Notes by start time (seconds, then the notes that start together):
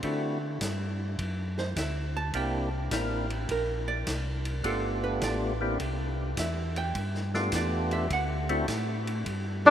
0.03 D3 A3 C4 D4 E4 F#4, kick, ride
0.61 G2, kick, snare, hi-hat pedal, ride
1.19 F#2, kick, ride
1.58 C5, snare
1.76 D2 E5, kick, snare, hi-hat pedal, ride
2.17 A5
2.33 C2 A#3 C4 D4 E4 G4 G5, kick, ride
2.91 A1 A#3 C4 D4 E4 A#4, kick, snare, hi-hat pedal, ride
3.30 ride
3.49 A#1 A#4, kick, ride
3.88 D5
4.06 C2, kick, snare, hi-hat pedal, ride
4.45 ride
4.64 G1 A3 B3 D4 F4 G4 A4, kick, ride
5.04 B4
5.21 A1 D5, kick, snare, hi-hat pedal, ride
5.61 A#3 C4 D4 E4 G4
5.79 C2, kick, ride
6.37 E2 E5, kick, snare, hi-hat pedal, ride
6.76 G5, ride
6.95 G2, kick, ride
7.14 snare
7.34 A3 B3 D4 F4 G4, snare
7.52 E2 D5, kick, snare, hi-hat pedal, ride
7.91 E5, ride
8.10 D2 F#5, kick, ride
8.49 A3 C4 D4 E4 F#4, ride
8.68 A2, kick, snare, hi-hat pedal, ride
9.07 ride
9.26 G2, kick, ride
9.65 G3 B3 D4 F4 A4